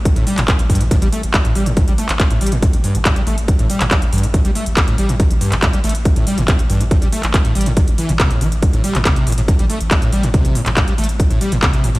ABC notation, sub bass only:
X:1
M:4/4
L:1/16
Q:1/4=140
K:Am
V:1 name="Sub bass" clef=bass
z A,,, z A,,, z A,,, A,,, A,,, z A,,, z A,,, z A,,, A,,, A,,, | z A,,, z A,,, z A,,, A,,, A,,, z A,,, z A,,, z A,,, A,,, A,,, | z A,,, z A,,, z A,,, A,,, A,,, z A,,, z A,,, z A,,, A,,, A,,, | z A,,, z A,,, z A,,, A,,, A,,, z A,,, z A,,, z A,,, A,,, A,,, |
z A,,, z A,,, z A,,, A,,, A,,, z A,,, z A,,, z A,,, A,,, A,,, | z A,,, z A,,, z A,,, A,,, A,,, z A,,, z A,,, z A,,, A,,, A,,, | z A,,, z A,,, z A,,, A,,, A,,, z A,,, z A,,, z A,,, A,,, A,,, |]